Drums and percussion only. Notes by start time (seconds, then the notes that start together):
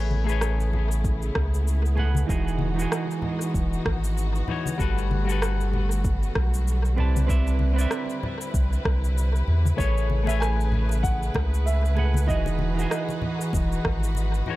0.11 high conga
0.29 cabasa
0.41 cross-stick, cabasa
0.60 cabasa
0.73 low conga
0.92 cabasa
1.04 kick, cabasa
1.22 cabasa
1.35 kick, cross-stick
1.54 cabasa
1.67 cabasa
1.86 cabasa
1.98 low conga
2.15 high conga, cabasa
2.29 kick, cabasa
2.48 cabasa
2.59 high conga
2.79 cabasa
2.92 cross-stick, cabasa
3.11 cabasa
3.22 low conga
3.41 cabasa
3.54 kick, cabasa
3.73 cabasa
3.85 kick, cross-stick
4.04 cabasa
4.18 cabasa
4.35 cabasa
4.48 low conga
4.66 high conga, cabasa
4.79 kick, cabasa
4.98 cabasa
5.11 high conga
5.29 cabasa
5.42 cross-stick, cabasa
5.61 cabasa
5.73 low conga
5.91 cabasa
6.04 kick, cabasa
6.23 cabasa
6.35 kick, cross-stick
6.54 cabasa
6.68 cabasa
6.85 cabasa
6.98 low conga
7.16 high conga, cabasa
7.29 kick, cabasa
7.47 cabasa
7.59 high conga
7.79 cabasa
7.91 cross-stick, cabasa
8.10 cabasa
8.23 low conga
8.41 cabasa
8.54 kick, cabasa
8.73 cabasa
8.85 kick, cross-stick
9.04 cabasa
9.18 cabasa
9.36 cabasa
9.47 low conga
9.65 high conga, cabasa
9.78 kick, muted conga, cabasa
9.98 cabasa
10.10 high conga
10.27 muted conga, cabasa
10.42 cross-stick, cabasa
10.60 cabasa
10.72 low conga
10.89 muted conga, cabasa
11.04 kick, cabasa
11.23 cabasa
11.34 kick, cross-stick, muted conga
11.54 cabasa
11.67 cabasa
11.85 cabasa
11.97 muted conga, low conga
12.14 high conga, cabasa
12.29 kick, cabasa
12.46 muted conga, cabasa
12.59 high conga
12.79 cabasa
12.91 cross-stick, cabasa
13.09 muted conga, cabasa
13.22 low conga
13.41 cabasa
13.53 kick, muted conga, cabasa
13.72 cabasa
13.85 kick, cross-stick
14.03 cabasa
14.15 muted conga, cabasa
14.34 cabasa
14.46 low conga